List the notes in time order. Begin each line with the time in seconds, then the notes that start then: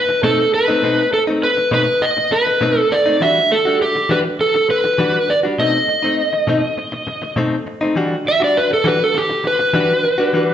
Already playing: B4
0.09 muted clean electric guitar stroke
0.23 B2 A3 C4 D#4 A4
0.53 B4, muted clean electric guitar stroke
0.68 A3 C4 D#4
0.83 B2 A3 C4 D#4
1.12 A4, muted clean electric guitar stroke
1.27 A3 C4 D#4
1.43 B4
1.57 muted clean electric guitar stroke
1.71 B2 A3 C4 D#4 B4
1.87 muted clean electric guitar stroke
2.02 D#5, muted clean electric guitar stroke
2.17 muted clean electric guitar stroke
2.31 B4, muted clean electric guitar stroke
2.47 muted clean electric guitar stroke
2.61 B2 A3 C4 D#4
2.79 A4
2.91 D5, muted clean electric guitar stroke
3.06 A3 C4 D#4
3.20 E3 G3 D4 F#4 E5
3.50 A4, muted clean electric guitar stroke
3.65 G3 D4 F#4
3.82 G4
3.95 muted clean electric guitar stroke
4.09 E3 G3 D4 F#4 B4
4.25 muted clean electric guitar stroke
4.39 A4, muted clean electric guitar stroke
4.54 muted clean electric guitar stroke
4.69 B4, muted clean electric guitar stroke
4.84 muted clean electric guitar stroke
4.98 E3 G3 D4 F#4
5.28 D5, muted clean electric guitar stroke
5.43 G3 D4 F#4
5.58 B2 A3 C4 D#4 D#5
5.88 muted clean electric guitar stroke
6.03 A3 C4 D#4
6.33 muted clean electric guitar stroke
6.47 B2 A3 C4 D#4
6.63 muted clean electric guitar stroke
6.77 muted clean electric guitar stroke
6.92 muted clean electric guitar stroke
7.07 muted clean electric guitar stroke
7.22 muted clean electric guitar stroke
7.36 B2 A3 C4 D#4
7.66 muted clean electric guitar stroke
7.81 A3 C4 D#4
7.96 E3 G3 D4 F#4
8.25 E5, muted clean electric guitar stroke
8.40 G3 D4 F#4
8.44 D5
8.57 B4
8.70 A4, muted clean electric guitar stroke
8.84 E3 G3 D4 F#4 B4
9.00 A4, muted clean electric guitar stroke
9.14 G4, muted clean electric guitar stroke
9.30 muted clean electric guitar stroke
9.44 B4, muted clean electric guitar stroke
9.59 muted clean electric guitar stroke
9.73 E3 G3 D4 F#4
10.04 muted clean electric guitar stroke
10.18 G3 D4 F#4
10.33 E3 G3 D4 F#4